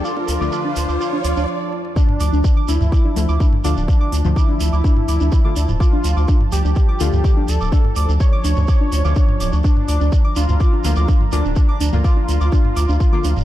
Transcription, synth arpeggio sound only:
X:1
M:4/4
L:1/16
Q:1/4=125
K:Dm
V:1 name="Synth arpeggio sound"
d' D z d' d' D z d' d' D d' D z4 | D z d' D z d' D z d' D z d' D z d' D | z d' D z d' D z d' D z d' D z d' D z | d' D z d' D z d' D z d' D z d' D z d' |
D z d' D z d' D z d' D z d' D z d' D | D z d' D z d' D z d' D z d' D z d' D | z d' D z d' D z d' D z d' D z d' D z |]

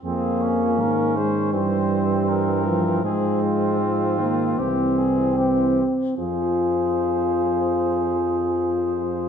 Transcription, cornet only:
X:1
M:4/4
L:1/8
Q:1/4=76
K:Fm
V:1 name="Cornet"
A2 B c c2 B2 | A F3 G A G z | c8 |]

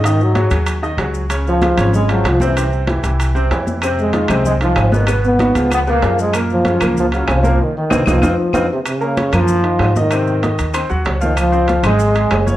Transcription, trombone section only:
X:1
M:4/4
L:1/8
Q:1/4=191
K:Abmix
V:1 name="Trombone section" clef=bass
E, G,2 z4 z | z F,3 A, G, F, =E,- | =E, z6 z | z A,3 A, F,2 E, |
z _C3 C B,2 A, | z F,3 F, G, F,2 | E, E,2 F,4 C, | D,3 F,4 E,- |
E,4- E, z2 E, | F,3 A,4 G, |]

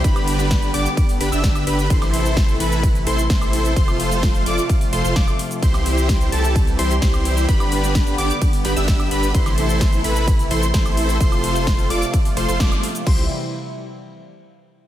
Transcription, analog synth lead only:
X:1
M:4/4
L:1/16
Q:1/4=129
K:C
V:1 name="Analog synth lead"
b6 d' z3 b e'3 b2 | c'6 b2 z2 c' z c'4 | c'6 d' z3 c' c' d' z3 | c'6 a2 z2 c' z c'4 |
b6 d' z3 b e'3 b2 | c'6 b2 z2 c' z c'4 | c'6 d' z3 c' c' d' z3 | c'2 z12 z2 |]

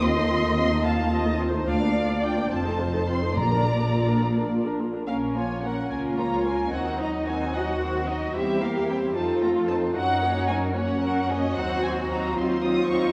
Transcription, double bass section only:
X:1
M:6/8
L:1/8
Q:3/8=74
K:Bb
V:1 name="Double bass section" clef=bass
E,,6 | D,,3 F,,,3 | B,,,4- B,,, z | [K:Bbm] B,,,3 D,,3 |
E,,6 | =E,,3 F,,3 | G,,6 | E,,3 E,,3 |]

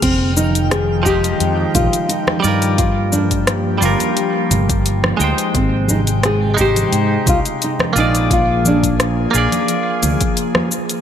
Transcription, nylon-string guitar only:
X:1
M:4/4
L:1/8
Q:"Swing 16ths" 1/4=87
K:Fdor
V:1 name="Nylon-string guitar"
C E A G2 F E E | F D6 z | C E A G2 F E E | F D6 z |]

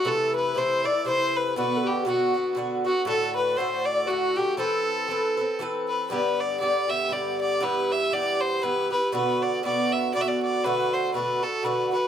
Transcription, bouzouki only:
X:1
M:3/4
L:1/8
Q:"Swing" 1/4=119
K:Ador
V:1 name="Bouzouki"
[C,E,A,E]2 [C,E,A,E] [E,A,E] [C,E,A,E]2 | [B,,D,B,F]2 [B,,D,B,F] [D,B,F] [B,,D,B,F] [D,B,F] | [A,,D,A,F]2 [A,,D,A,F]2 [A,,D,A,F] [D,A,F] | [E,CAB]2 [E,CAB] [CAB] [E,CAB]2 |
[G,,D,B,G]2 [G,,D,B,G] [D,B,G] [G,,D,B,G]2 | [G,,E,B,G]2 [G,,E,B,G]2 [G,,E,B,G] [E,B,G] | [B,,D,B,F]2 [B,,D,B,F]2 [B,,D,B,F]2 | [B,,D,A,F]2 [B,,D,A,F] [D,A,F] [B,,D,A,F] [D,A,F] |]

